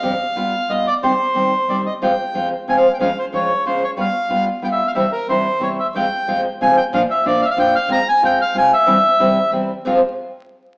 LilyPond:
<<
  \new Staff \with { instrumentName = "Bandoneon" } { \time 3/4 \key c \minor \tempo 4 = 184 f''2 ees''8 d''8 | c''2 d''8 ees''8 | \key f \minor g''4. r8 aes''16 f''8 g''16 | f''8 c''8 des''4 c''8 des''8 |
f''4. r8 g''16 e''8 f''16 | e''8 bes'8 c''4 des''8 e''8 | g''4. r8 aes''8 g''8 | f''8 e''8 d''8 f''32 e''32 f''16 g''8 f''8 |
bes''8 aes''8 g''8 f''8 aes''8 e''8~ | e''2 r4 | r2. | }
  \new Staff \with { instrumentName = "Nylon-string guitar" } { \clef bass \time 3/4 \key c \minor <g, c f c' d' g'>8 r8 <g b f'>8 r8 <g b f'>8 r8 | <c ees g c' g'>8 r8 <c ees g c' g'>8 r8 <c ees g c' g'>8 r8 | \key f \minor <f, c f aes c' f'>8 r8 <f, c f aes c' f'>8 r8 <f, c f aes c' f'>8 r8 | <f, des f aes des' f'>8 r8 <f, des f aes des' f'>8 r8 <f, des f aes des' f'>8 r8 |
<g b f'>8 r8 <g b f'>8 r8 <g b f'>8 r8 | <c e g c' e'>8 r8 <c e g c' e'>8 r8 <c e g c' e'>8 r8 | <f, c f aes c' f'>8 r8 <f, c f aes c' f'>8 r8 <f, c f aes c' f'>8 r8 | <bes, f bes d' f'>8 r8 <bes, f bes d' f'>8 r8 <bes, f bes d' f'>8 r8 |
<aes c' f'>8 r8 <aes c' f'>8 r8 <aes c' f'>8 r8 | <c e g c' e'>8 r8 <c e g c' e'>8 r8 <c e g c' e'>8 r8 | <f, c f aes c' f'>8 r2 r8 | }
>>